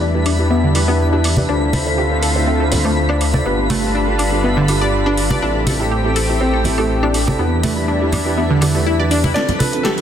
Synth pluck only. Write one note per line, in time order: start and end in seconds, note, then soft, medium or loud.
0.01 0.10 D4 medium
0.26 0.38 D4 medium
0.50 0.63 B3 medium
0.63 0.71 D3 medium
0.88 0.93 B3 loud
1.13 1.24 D4 loud
1.37 1.42 D4 medium
1.49 1.61 D4 loud
1.73 1.78 A4 medium
1.98 2.06 G4 medium
2.23 2.35 A4 medium
2.47 2.60 C4 medium
2.60 2.68 A4 medium
2.85 2.89 A3 medium
3.09 3.17 D4 loud
3.34 3.45 D5 medium
3.46 3.58 B3 medium
3.70 3.79 A3 loud
3.95 4.03 D4 medium
4.19 4.32 D4 medium
4.44 4.56 B3 medium
4.57 4.64 D3 loud
4.81 4.89 D5 loud
5.06 5.11 D4 loud
5.31 5.42 D5 loud
5.42 5.55 D4 loud
5.67 5.72 A4 medium
5.91 6.00 G4 medium
6.16 6.28 A4 loud
6.41 6.53 C4 medium
6.54 6.61 A4 medium
6.78 6.83 A3 loud
7.03 7.10 D4 loud
7.27 7.38 D5 medium
7.39 7.51 B3 medium
7.64 7.72 A3 medium
7.88 7.97 D4 medium
8.13 8.25 D4 medium
8.37 8.50 B3 medium
8.50 8.58 D3 medium
8.62 8.67 D3 loud
8.75 8.82 A3 medium
8.87 8.95 E4 loud
8.99 9.07 D5 loud
9.11 9.16 D4 loud
9.24 9.35 E4 loud
9.36 9.48 D4 loud
9.60 9.65 A4 medium
9.85 9.93 G4 medium